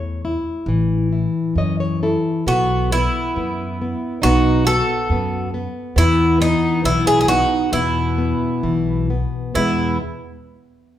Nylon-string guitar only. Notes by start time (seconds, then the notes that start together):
Already playing: A3 C#5
0.25 E4
0.69 E3
1.12 E4
1.58 C#5 D#5
1.80 C#5
2.03 E4 A4
2.48 B3
2.95 B3
3.38 B3
3.82 B3
4.25 B3
4.68 B3
5.12 B3
5.54 B3
5.98 E3
6.41 B3
6.85 E3
7.28 B3
7.73 B2
8.18 B3
8.63 E3
9.10 B3
9.56 E2 B2 E3 G#3 B3